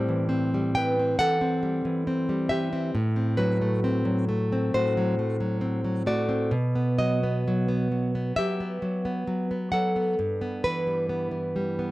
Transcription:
Already playing: A2 G3 C4 C5 A5
0.09 E3
0.29 C4
0.54 G3
0.75 E3 B4 G5
0.99 C4
1.19 E3 A4 F#5
1.41 C4
1.63 G3
1.85 E3
2.07 C4
2.29 G3
2.49 E3 G4 E5
2.73 C4
2.95 A2
3.16 C4
3.37 F#3 F#4 B4
3.62 A3
3.84 C4
4.05 F#3
4.29 A3
4.52 C4
4.74 A2 F#4 C5
4.97 F#3
5.19 A3
5.40 F#3
5.61 C4
5.84 F#3
6.06 A3 F#4 D5
6.29 C4
6.51 B2
6.75 B3
6.99 F#3 F#4 D#5
7.23 B3
7.48 F#3
7.68 B3
7.92 F#3
8.15 B3
8.36 F#3 G4 E5
8.60 B3
8.82 F#3
9.05 B3
9.27 F#3
9.51 B3
9.72 F#3 A4 F#5
9.96 B3
10.19 G2
10.41 B3
10.64 E3 E4 B4
10.87 G3
11.09 B3
11.31 E3
11.56 G3
11.79 B3

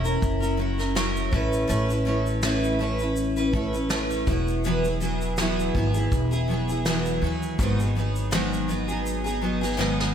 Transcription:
Already playing: E1
0.04 C#4 E4 A#4, shaker
0.22 F#1, kick, shaker
0.40 C#4 E4 A#4, shaker
0.57 F#3 C#4 E4 A#4
0.78 C#4 E4 A#4, snare, shaker
0.95 F#3 C#4 E4 A#4, snare, shaker
1.16 shaker
1.31 A1 A3 C#4 E4 B4, kick
1.53 shaker
1.68 A1 A3 C#4 E4 B4, shaker
1.89 C#4 E4 B4, shaker
2.05 A3 C#4 E4 B4
2.27 shaker
2.42 A3 C#4 E4 B4, snare, shaker
2.64 shaker
2.79 A3 C#4 E4 B4
2.99 C#4 E4 B4, shaker
3.16 shaker
3.37 C#4 E4 B4, shaker
3.53 A3 C#4 E4 B4, kick
3.73 C#4 E4 B4, shaker
3.89 A3 C#4 E4 B4, snare, shaker
4.11 shaker
4.27 E1 F#3 B3 E4 G#4, kick, shaker
4.48 shaker
4.64 E3 F#3 B3 E4 G#4, shaker
4.84 B3 E4 G#4, shaker
5.01 F#3 B3 E4 G#4, shaker
5.21 shaker
5.37 E3 F#3 B3 E4 G#4, snare, shaker
5.60 shaker
5.74 G#1 F#3 B3 E4 G#4, kick
5.94 B3 E4 G#4, shaker
6.12 E1, kick, shaker
6.31 B3 E4 G#4, shaker
6.48 F#3 B3 E4 G#4
6.69 B3 E4 G#4, shaker
6.85 E3 F#3 B3 E4 G#4, snare, shaker
7.06 shaker
7.22 D#2 F#3 B3 E4 G#4
7.43 shaker
7.59 G#1 G#2 D#3 F#3 B3 D#4 G#4, kick, shaker
7.79 F#3 B3 D#4 G#4, shaker
7.95 F#3 B3 D#4 G#4
8.16 shaker
8.31 G#2 D#3 F#3 B3 D#4 G#4, snare, shaker
8.53 shaker
8.68 F#3 B3 D#4 G#4, shaker
8.88 F#3 B3 D#4 G#4, shaker
9.06 shaker
9.24 F#3 B3 D#4 G#4, shaker
9.41 F#3 B3 D#4 G#4
9.61 F#3 B3 D#4 G#4, snare, shaker
9.77 G#2 D#3 F#3 B3 D#4 G#4, snare
10.00 snare

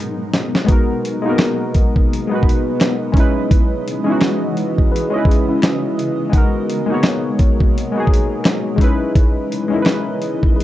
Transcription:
Already playing: G#2 B2 F#3 G#3 B3 D#4
0.34 snare, closed hi-hat
0.55 snare
0.65 B2 F#3 G#3 B3 D#4 D#5, kick, closed hi-hat
0.70 F#4 A#4
1.05 closed hi-hat
1.22 G#3 A#3 D#4
1.28 B3 F#4 A#4
1.38 finger snap, snare, closed hi-hat
1.74 kick, closed hi-hat
1.96 kick
2.13 closed hi-hat
2.27 G#3 B3
2.31 D#4 F#4 B4
2.43 kick
2.49 closed hi-hat
2.80 finger snap, snare, closed hi-hat
3.12 C#3 E3 G#3 B3 C#4 D#4, kick
3.17 E4 B4, closed hi-hat
3.51 kick, closed hi-hat
3.88 closed hi-hat
4.04 G#3 C#4 D#4
4.10 E4 F#4
4.21 finger snap, snare, closed hi-hat
4.57 closed hi-hat
4.78 kick
4.92 G#4 B4
4.96 closed hi-hat
5.10 G#3 C#4 D#5
5.16 E4 B4
5.25 E4 G#4, kick
5.31 closed hi-hat
5.49 C#4 E4
5.62 finger snap, snare, closed hi-hat
5.99 closed hi-hat
6.30 B2 F#3 G#3 B3 D#4 A#4, kick, closed hi-hat
6.35 F#4 A#4
6.70 closed hi-hat
6.86 G#3 A#3 D#4
6.92 B3 F#4 C#5
7.03 finger snap, snare, closed hi-hat
7.39 kick, closed hi-hat
7.60 kick
7.78 closed hi-hat
7.92 G#3 B3
7.96 D#4 F#4 G#4
8.07 kick
8.14 closed hi-hat
8.44 finger snap, snare, closed hi-hat
8.76 C#3 E3 G#3 B3 C#4 D#4 D#5, kick
8.81 E4 B4, closed hi-hat
9.15 kick, closed hi-hat
9.52 closed hi-hat
9.68 G#3 C#4 D#4
9.74 E4 A#4
9.82 B4, finger snap, snare
9.89 closed hi-hat
10.22 closed hi-hat
10.43 kick
10.56 G#4 B4
10.60 closed hi-hat

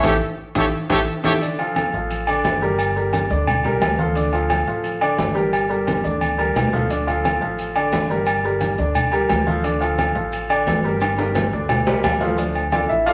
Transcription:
0.04 A1 E4 G4 A4 C#5, high conga, high timbale, maracas
0.55 A1 E4 G4 A4 C#5, high conga, high timbale, maracas
0.90 A1 E4 G4 A4 C#5, high conga, high timbale, maracas
1.24 A1 E4 G4 A4 C#5, high conga, high timbale, maracas
1.42 D3 D4 D5, high conga, low agogo, maracas
1.59 F3 F4 A4, high conga, low agogo, maracas
1.76 high conga, low timbale, low agogo, maracas
1.93 A1 F3 F4 A4, high conga, maracas
2.10 high conga, low agogo, maracas
2.27 D3 D4 D5, high conga, low agogo, maracas
2.44 G1, high conga, low timbale, low agogo, maracas
2.62 G3 G4 A#4, high conga, maracas
2.79 high conga, low agogo, maracas
2.96 G3 G4 A#4, high conga, maracas
3.13 high conga, low timbale, low agogo, maracas
3.30 D2 D3 D4 D5, high conga, maracas
3.47 high conga, low conga, low agogo, maracas
3.64 C2 G3 G4 A#4, high conga, low conga, low agogo, maracas
3.81 D2, high conga, low timbale, low agogo, maracas
3.99 F3 F4 A4, high conga, maracas
4.15 D3 D4 D5, high conga, low agogo, maracas
4.33 F3 F4 A4, high conga, low agogo, maracas
4.50 high conga, low timbale, low agogo, maracas
4.67 A1 F3 F4 A4, high conga, maracas
4.84 high conga, low agogo, maracas
5.01 D3 D4 D5, high conga, low agogo, maracas
5.19 G1, high conga, low timbale, low agogo, maracas
5.35 G3 G4 A#4, high conga, maracas
5.53 high conga, low agogo, maracas
5.69 G3 G4 A#4, high conga, maracas
5.87 high conga, low timbale, low agogo, maracas
6.04 D2 D3 D4 D5, high conga, maracas
6.21 high conga, low agogo, maracas
6.38 G3 G4 A#4, low agogo, maracas
6.56 D2, low conga, low timbale, low agogo, maracas
6.73 F3 F4 A4, low conga, maracas
6.90 D3 D4 D5, high conga, low agogo, maracas
7.07 F3 F4 A4, high conga, low agogo, maracas
7.25 high conga, low timbale, low agogo, maracas
7.41 A1 F3 F4 A4, high conga, maracas
7.59 high conga, low agogo, maracas
7.75 D3 D4 D5, high conga, low agogo, maracas
7.92 G1, high conga, low timbale, low agogo, maracas
8.10 G3 G4 A#4, high conga, maracas
8.26 high conga, low agogo, maracas
8.44 G3 G4 A#4, high conga, maracas
8.61 high conga, low timbale, low agogo, maracas
8.78 D2 D3 D4 D5, high conga, maracas
8.95 high conga, low conga, low agogo, maracas
9.12 G3 G4 A#4, low agogo, maracas
9.29 D2, high conga, low timbale, low agogo, maracas
9.47 F3 F4 A4, high conga, maracas
9.63 D3 D4 D5, high conga, low agogo, maracas
9.80 F3 F4 A4, high conga, low agogo, maracas
9.98 high conga, low timbale, low agogo, maracas
10.15 A1 F3 F4 A4, high conga, maracas
10.32 high conga, low agogo, maracas
10.49 D3 D4 D5, high conga, low agogo, maracas
10.67 G1, high conga, low timbale, low agogo, maracas
10.84 G3 G4 A#4, high conga, maracas
11.01 high conga, high timbale, low agogo, maracas
11.18 G3 G4 A#4, high conga, high timbale, maracas
11.35 high conga, low timbale, low agogo, maracas
11.52 D2 D3 D4 D5, high conga, maracas
11.69 high conga, low conga, low timbale, low agogo, maracas
11.86 C2 G3 G4 A#4, high conga, low timbale, low agogo, maracas
12.03 D2, high conga, low timbale, low agogo, maracas
12.20 F3 F4 A4, high conga, low timbale, maracas
12.37 F3 A3 D4, high conga, low agogo, maracas
12.55 high conga, low agogo, maracas
12.72 D4 F4 A4 D5, high conga, low timbale, low agogo, maracas
12.89 A1 E4 E5, high conga, maracas
13.06 F4 A4 D5 F5, high conga, low agogo, maracas

